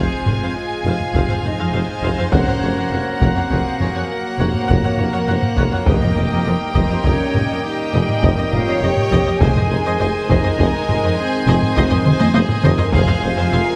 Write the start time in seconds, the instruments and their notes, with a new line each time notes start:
Already playing: trombone section F3 G#3, pipe organ G#3 F4 F5 G#5, french horn section C4, violin section G#4 G#5, flute section C5, impact
0.26 tuba F1, double bass section F1, cello section F2, viola section C5, taiko low-mid
0.41 cello section F2, viola section C5 F5
0.55 french horn section F4, violin section G#4, flute section F5
0.85 tuba F1, double bass section F1, cello section F2, viola section C5 F5
1.00 taiko low-mid
1.14 double bass section F1, tuba F1, cello section F2, viola section C5 F5, taiko
1.29 cello section F2, viola section C5 F5, taiko low-mid
1.43 double bass section F1, tuba F1, cello section F2, french horn section D#4, violin section C5, viola section C5, flute section D#5, taiko low-mid
1.59 cello section F2, viola section C5 F5
1.73 double bass section F1, tuba F1, cello section F2, viola section C5 F5
1.88 taiko low-mid
2.02 double bass section F1, tuba F1, cello section F2, viola section C5 F5, taiko
2.18 cello section F2, viola section C5 F5
2.31 double bass section F1, tuba F1, cello section F2, timpani F2, trombone section F#3 A#3, pipe organ A#3 F#4 A#4 F#5, french horn section C#4, viola section C#5 F#5, flute section C#5, violin section F#5, taiko
2.47 cello section F2, viola section C#5 F#5, taiko low-mid
2.62 tuba F1, double bass section F1, cello section F2, viola section C#5
2.77 cello section F2, viola section C#5 F#5
2.91 tuba F1, double bass section F1, cello section F2, viola section C#5 F#5
3.21 tuba F1, double bass section F1, cello section F2, french horn section C4, violin section A#4, flute section C5, viola section C#5 F#5, taiko
3.35 cello section F2, viola section C#5 F#5
3.50 tuba F1, double bass section F1, cello section F2, violin section G#4, viola section C#5 F#5, taiko
3.79 tuba F1, double bass section F1, cello section F2, violin section G#4, viola section C#5, taiko low-mid
3.94 cello section F2, viola section C#5 F#5
4.09 french horn section A#3, flute section A#4, violin section A#4
4.39 tuba F1, double bass section F1, cello section F2, violin section C5, viola section C#5 F#5
4.54 taiko low-mid
4.68 tuba F1, double bass section F1, cello section F2, viola section C#5 F#5, violin section C#5, taiko
4.83 cello section F2, viola section C#5 F#5, taiko low-mid
4.98 double bass section F1, tuba F1, cello section F2, violin section A#4, viola section C#5, taiko low-mid
5.13 cello section F2, viola section C#5 F#5
5.27 double bass section F1, tuba F1, cello section F2, violin section C5, viola section C#5 F#5
5.42 taiko low-mid
5.57 double bass section F1, tuba F1, cello section F2, violin section C#5, viola section C#5 F#5, taiko
5.72 cello section F2, viola section C#5 F#5
5.86 double bass section F1, tuba F1, cello section F2, timpani F2, trombone section D#3 G3, pipe organ A#3 G4 D#5, french horn section A#3, violin section A#4 G5, flute section A#4, viola section D#5, taiko
6.01 cello section F2, viola section D#5, taiko low-mid
6.15 tuba F1, double bass section F1, cello section F2, violin section G4, viola section A#4 D#5
6.30 cello section F2, viola section D#5
6.45 tuba F1, double bass section F1, cello section F2, violin section A#4, viola section D#5
6.74 double bass section F1, tuba F1, cello section F2, french horn section C4, flute section C5, viola section D#5, taiko
6.89 cello section F2, viola section D#5
7.04 tuba F1, double bass section F1, cello section F2, french horn section C#4, flute section C#5, viola section D#5, taiko
7.34 tuba F1, double bass section F1, cello section F2, viola section A#4 D#5, taiko low-mid
7.49 cello section F2, viola section D#5
7.63 french horn section D#4, violin section G4, flute section D#5
7.93 tuba F1, double bass section F1, cello section F2, violin section G#4, viola section D#5
8.09 taiko low-mid
8.22 tuba F1, double bass section F1, cello section F2, violin section A#4, viola section D#5, taiko
8.37 cello section F2, viola section D#5, taiko low-mid
8.52 tuba F1, double bass section F1, cello section F2, french horn section F4, viola section A#4 D#5, violin section C#5, flute section F5, taiko low-mid
8.67 cello section F2, viola section D#5
8.81 double bass section F1, tuba F1, cello section F2, french horn section G4, viola section D#5, flute section G5
8.97 taiko low-mid
9.11 tuba F1, double bass section F1, cello section F2, viola section D#5, taiko
9.26 cello section F2, viola section D#5
9.39 tuba F1, double bass section F1, cello section F2, timpani F2, trombone section D#3 G#3, pipe organ G#3 G#4 C5 D#5, french horn section G#4, violin section C5 G#5, viola section C5 D#5, flute section G#5, taiko
9.56 cello section F2, viola section C5 D#5, taiko low-mid
9.70 tuba F1, double bass section F1, cello section F2, violin section A#4, viola section C5
9.86 cello section F2, viola section C5 D#5
9.98 tuba F1, double bass section F1, cello section F2, violin section C5, viola section C5 D#5
10.28 tuba F1, double bass section F1, cello section F2, french horn section D#4, violin section A#4, viola section C5 D#5, flute section D#5, taiko
10.44 cello section F2, viola section C5 D#5
10.59 tuba F1, double bass section F1, cello section F2, viola section C5 D#5, taiko
10.88 tuba F1, double bass section F1, cello section F2, viola section C5, taiko low-mid
11.04 cello section F2, viola section C5 D#5
11.17 french horn section C4, violin section G#4, flute section C5
11.47 double bass section F1, tuba F1, cello section F2, violin section G#4, viola section C5 D#5
11.62 taiko low-mid
11.76 double bass section F1, tuba F1, cello section F2, violin section A#4, viola section C5 D#5, taiko
11.90 cello section F2, viola section C5 D#5, taiko low-mid
12.04 double bass section F1, tuba F1, cello section F2, viola section C5, violin section C5, taiko mid
12.19 cello section F2, viola section C5 D#5, taiko high
12.34 double bass section F1, tuba F1, cello section F2, violin section G#4, viola section C5 D#5, taiko high
12.49 taiko low-mid
12.63 double bass section F1, tuba F1, cello section F2, violin section A#4, viola section C5 D#5, taiko mid
12.78 cello section F2, viola section C5 D#5, taiko low
12.92 double bass section F1, tuba F1, cello section F2, timpani F2, trombone section C3 G#3, pipe organ G#3 G#4 C5 F5, french horn section F4, violin section G#4 G#5, viola section C5 F5, flute section F5, taiko
13.07 cello section F2, viola section C5 F5, taiko low-mid
13.23 double bass section F1, tuba F1, cello section F2, violin section C5, viola section C5
13.37 cello section F2, viola section C5 F5
13.52 double bass section F1, tuba F1, cello section F2, violin section A#4, viola section C5 F5